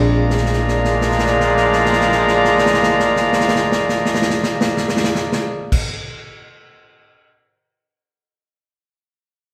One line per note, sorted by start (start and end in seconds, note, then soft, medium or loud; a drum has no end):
0.00 5.78 A#1 loud
0.00 5.78 A#2 loud
0.00 5.79 A#2 medium
0.00 5.81 A#2 medium
0.00 5.77 F3 loud
0.00 5.78 G#3 loud
0.00 5.82 G#3 medium
0.00 5.81 A#3 medium
0.00 5.82 C4 medium
0.00 5.84 C4 medium
0.00 5.78 D4 loud
0.00 5.84 D4 medium
0.00 5.85 D4 medium
0.00 5.78 G#4 loud
0.00 5.85 G#4 medium
0.00 5.78 D5 loud
0.00 5.78 F5 medium
0.00 5.78 A#5 loud
0.30 snare soft
0.37 snare medium
0.45 snare medium
0.53 snare soft
0.68 snare soft
0.84 snare medium
1.01 snare medium
1.11 snare soft
1.18 snare medium
1.26 snare medium
1.40 snare medium
1.57 snare medium
1.72 snare medium
1.85 snare medium
1.93 snare medium
2.01 snare medium
2.12 snare medium
2.27 snare medium
2.44 snare medium
2.58 snare medium
2.66 snare medium
2.73 snare medium
2.83 snare medium
2.99 snare medium
3.16 snare medium
3.33 snare medium
3.40 snare medium
3.48 snare medium
3.56 snare medium
3.72 snare medium
3.89 snare medium
4.05 snare medium
4.15 snare medium
4.22 snare medium
4.30 snare medium
4.43 snare medium
4.61 snare loud
4.77 snare medium
4.89 snare medium
4.97 snare medium
5.04 snare loud
5.15 snare medium
5.32 snare medium
5.72 kick loud
5.72 crash medium